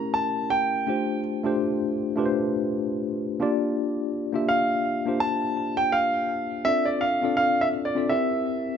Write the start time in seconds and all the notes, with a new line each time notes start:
Already playing: A3 C#4 E4 G4 A#4 A#5
0.14 A5
0.50 G5
0.87 A3 D4 F4 G4 C5
1.44 A3 D4 F4 G4 C5
2.16 A3 D4 F4 G4 B4
2.26 C5
3.40 A#3 D4 F4 G4 D5
4.33 A#3 D4 F4 G4 E5
4.49 F5
5.06 A#3 D4 F4 G4 C5
5.20 A5
5.77 G5
5.92 F5
6.65 C4 D4 F4 A4 D5 E5
6.85 D5
7.01 F5
7.22 C4 D4 F4 A4 D5
7.37 F5
7.61 E5
7.85 D5
7.95 C4 D4 F4 A4 D5
8.09 C4 E4 G4 A#4 E5